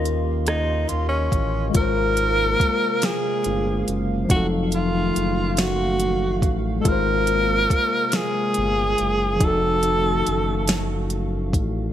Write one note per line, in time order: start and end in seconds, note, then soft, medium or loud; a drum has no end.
0.00 0.86 D#2 loud
0.00 1.68 D#3 medium
0.00 1.70 C#4 medium
0.00 1.72 F4 medium
0.00 1.71 G4 medium
0.00 1.74 A#4 medium
0.00 1.71 D#5 medium
0.00 1.70 F5 medium
0.00 1.71 C6 medium
0.05 closed hi-hat medium
0.47 0.90 D#4 medium
0.47 cross-stick loud
0.47 closed hi-hat medium
0.88 1.29 D#2 medium
0.88 1.08 F4 loud
0.88 closed hi-hat soft
1.09 1.70 C#4 medium
1.32 1.71 A1 medium
1.32 kick medium
1.32 closed hi-hat soft
1.70 4.24 G#3 medium
1.70 4.25 F4 medium
1.75 2.56 G#1 loud
1.75 4.28 C3 medium
1.75 4.28 G#3 medium
1.75 4.28 A#3 medium
1.75 3.06 A#4 loud
1.75 4.27 A#4 medium
1.75 11.92 F5 medium
1.75 kick loud
1.75 closed hi-hat medium
1.81 4.29 C5 medium
2.17 closed hi-hat medium
2.60 2.69 G1 soft
2.60 kick medium
2.60 closed hi-hat medium
3.02 3.89 G#4 loud
3.02 snare loud
3.02 closed hi-hat medium
3.44 3.84 G1 loud
3.44 closed hi-hat medium
3.88 4.26 F#1 medium
3.88 closed hi-hat soft
4.25 6.79 F3 medium
4.25 6.81 D#4 medium
4.29 5.11 F1 loud
4.29 6.82 D#3 medium
4.29 6.82 F#3 medium
4.29 6.82 A3 medium
4.29 4.47 F#4 loud
4.29 kick loud
4.29 closed hi-hat medium
4.36 6.84 A4 medium
4.72 5.54 F4 loud
4.72 closed hi-hat medium
5.16 6.45 F#1 medium
5.16 closed hi-hat medium
5.54 5.62 F4 medium
5.54 closed hi-hat medium
5.58 6.55 F#4 loud
5.58 snare loud
6.00 closed hi-hat medium
6.42 6.82 A1 medium
6.42 kick medium
6.42 closed hi-hat soft
6.80 9.34 G#3 medium
6.80 6.89 A4 medium
6.84 7.67 G#1 loud
6.84 9.38 C3 medium
6.84 9.38 G#3 medium
6.84 9.38 A#3 medium
6.84 9.36 F4 medium
6.84 8.17 A#4 loud
6.84 9.38 A#4 medium
6.84 kick loud
6.84 closed hi-hat medium
6.92 9.40 C5 medium
7.27 closed hi-hat medium
7.70 7.80 G1 soft
7.70 kick medium
7.70 closed hi-hat medium
8.12 9.46 G#4 loud
8.12 snare loud
8.12 closed hi-hat medium
8.54 8.95 G1 medium
8.54 closed hi-hat medium
8.98 9.38 F#1 medium
8.98 closed hi-hat medium
9.36 11.90 F3 medium
9.36 11.91 D#4 medium
9.41 10.22 F1 loud
9.41 11.93 D#3 medium
9.41 11.93 A3 medium
9.41 11.93 F#4 medium
9.41 kick loud
9.41 closed hi-hat medium
9.45 11.13 A4 loud
9.45 11.93 A4 medium
9.83 closed hi-hat medium
10.27 11.56 F#1 medium
10.27 closed hi-hat medium
10.68 snare loud
10.68 closed hi-hat medium
11.10 closed hi-hat medium
11.53 11.92 A1 medium
11.53 kick loud
11.53 closed hi-hat medium